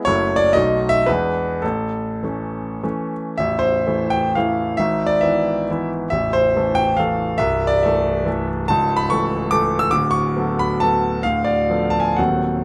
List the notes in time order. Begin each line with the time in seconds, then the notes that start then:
0.05 F#1 F#3 A3 E4 C#5
0.36 D5
0.53 B1 F#3 A3 D#4 D#5
0.89 E5
1.06 E2 E3 G#3 D4 B4
1.62 A1 A4
2.23 E3 A3 C#4
2.83 E3 A3 C#4
3.38 A0 A1 E5
3.59 C5
3.87 E3 A3 E4
4.10 G5
4.35 E3 A3 E4 F5
4.77 G#1 G#2 E5
5.06 D5
5.21 E3 B3 E4 E5
5.71 E3 B3 E4
6.10 A0 A1 E5
6.33 C5
6.56 E3 A3 A4
6.75 G5
6.97 E3 A3 A4 F5
7.38 C1 C2 E5
7.67 D5
7.83 E3 A3 A4 E5
8.25 E3 A3 A4
8.68 C#1 C#2 A5
8.97 B5
9.10 E3 A3 A4 C#6
9.51 E3 A3 A4 D6
9.79 E6
9.91 D1 D2 D6
10.11 C#6
10.37 F#3 B3 A4
10.59 B5
10.80 F#3 B3 A4 A5
11.23 D1 D2 F5
11.45 D5
11.70 F3 B3 A4
11.90 A5
12.00 G#5
12.16 D#1 D#2 F#3 C4 A4 F#5